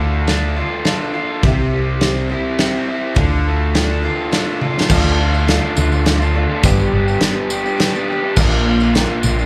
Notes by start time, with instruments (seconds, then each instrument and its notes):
Already playing: fingered electric bass D2, twelve-string acoustic guitar D3 A3 F4 A4 D5, overdriven electric guitar D3, grand piano A4 D5 F5
0.00 overdriven electric guitar A3
0.28 twelve-string acoustic guitar A3 F4 A4 D5, overdriven electric guitar D4, grand piano A4 D5 F5, snare, ride
0.57 overdriven electric guitar F4, twelve-string acoustic guitar F4 A4 D5
0.85 twelve-string acoustic guitar A3 F4 A4 D5, overdriven electric guitar D4, grand piano A4 D5 F5 A5, snare, ride
1.14 overdriven electric guitar F4, twelve-string acoustic guitar F4 A4 D5, grand piano D5
1.43 fingered electric bass C2, twelve-string acoustic guitar C3 G3 C4 E4 G4 C5, overdriven electric guitar C3, grand piano G4 C5 E5, kick, ride
1.73 overdriven electric guitar G3
2.01 twelve-string acoustic guitar C4 E4 G4 C5, overdriven electric guitar C4, grand piano G4 C5 E5, snare, ride
2.30 twelve-string acoustic guitar C4 E4 G4 C5, overdriven electric guitar E4
2.58 twelve-string acoustic guitar C4 E4 G4 C5, overdriven electric guitar C4, grand piano G4 C5 E5, snare, ride
2.89 overdriven electric guitar E4
3.15 fingered electric bass D2, twelve-string acoustic guitar D3 A3 F4 A4 D5, grand piano A4 D5 F5, kick, ride
3.19 overdriven electric guitar D3
3.47 overdriven electric guitar A3
3.74 twelve-string acoustic guitar A3 F4 A4 D5, overdriven electric guitar D4, grand piano A4 D5 G5, snare, ride
4.03 overdriven electric guitar F4, twelve-string acoustic guitar F4 A4 D5
4.31 twelve-string acoustic guitar A3 F4 A4 D5, overdriven electric guitar D4, grand piano A4 D5 F5, snare, ride
4.61 overdriven electric guitar F4, twelve-string acoustic guitar F4 A4 D5, high tom
4.81 snare
4.89 fingered electric bass D2, overdriven electric guitar D3 A3 D4 F4, twelve-string acoustic guitar D3 A3 F4 A4 D5, grand piano A4 D5 F5, kick, crash, tambourine
5.05 tambourine
5.18 overdriven electric guitar D3 A3 D4 F4
5.33 overdriven electric guitar A3 D4 F4, tambourine
5.47 overdriven electric guitar D3 A3 D4 F4, twelve-string acoustic guitar A3 F4 A4 D5, grand piano A4 D5 F5, snare, closed hi-hat
5.75 fingered electric bass D2, overdriven electric guitar D3 A3 D4, twelve-string acoustic guitar F4 A4 D5, tambourine
5.79 overdriven electric guitar F4
5.90 overdriven electric guitar A3 D4 F4, tambourine
6.04 twelve-string acoustic guitar A3 F4 A4 D5, grand piano A4 D5 F5, snare, closed hi-hat
6.19 overdriven electric guitar A3 D4 F4, tambourine
6.34 overdriven electric guitar D3 A3 D4 F4, twelve-string acoustic guitar F4 A4 D5
6.48 overdriven electric guitar A3 D4 F4
6.62 fingered electric bass G1, overdriven electric guitar G2 D3 G3 B3 D4 G4, twelve-string acoustic guitar G3 D4 G4 B4, grand piano B4 D5 G5, kick, closed hi-hat, tambourine
6.80 tambourine
6.92 fingered electric bass G1, overdriven electric guitar G3 B3 D4 G4
7.07 overdriven electric guitar G3 B3 D4 G4, tambourine
7.20 overdriven electric guitar G2 D3 G3 B3 D4 G4, twelve-string acoustic guitar G3 D4 G4, grand piano B4 D5 G5, snare, closed hi-hat
7.24 twelve-string acoustic guitar B4
7.50 overdriven electric guitar G3 B3 D4 G4, twelve-string acoustic guitar D4 G4 B4, tambourine
7.64 overdriven electric guitar G3 B3 D4 G4, tambourine
7.78 twelve-string acoustic guitar G3 D4 G4 B4, grand piano B4 D5 G5, snare, closed hi-hat
7.94 overdriven electric guitar G3 B3 D4 G4, tambourine
8.08 overdriven electric guitar G3 B3 D4 G4, twelve-string acoustic guitar G4 B4
8.12 twelve-string acoustic guitar D4
8.23 overdriven electric guitar G3 B3 D4 G4
8.36 fingered electric bass A#1, twelve-string acoustic guitar A#2 F3 A#3 D4 F4 A#4, overdriven electric guitar A#2 D3 A#3 D4 F4, grand piano A#4 D5 F5, kick, crash, tambourine
8.52 tambourine
8.65 overdriven electric guitar D3 A#3 D4 F4
8.80 overdriven electric guitar D4 F4, tambourine
8.85 overdriven electric guitar A#3
8.93 overdriven electric guitar A#2 D3, twelve-string acoustic guitar A#3 D4 F4 A#4, grand piano A#4 D5 G5, snare, closed hi-hat
8.97 overdriven electric guitar A#3 D4 F4
9.23 fingered electric bass A#1, overdriven electric guitar D3 A#3 D4, twelve-string acoustic guitar A#3 D4 F4 A#4, tambourine
9.28 overdriven electric guitar F4
9.39 overdriven electric guitar D4 F4, tambourine